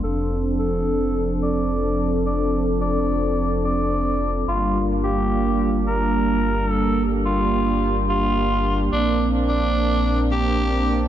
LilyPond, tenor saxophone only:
\new Staff \with { instrumentName = "Tenor saxophone" } { \time 4/4 \key g \minor \tempo 4 = 108 a'8 r8 a'4. d''4. | d''8 r8 d''4. d''4. | f'8 r8 g'4. bes'4. | a'8 r8 f'4. f'4. |
d'8 r8 d'4. g'4. | }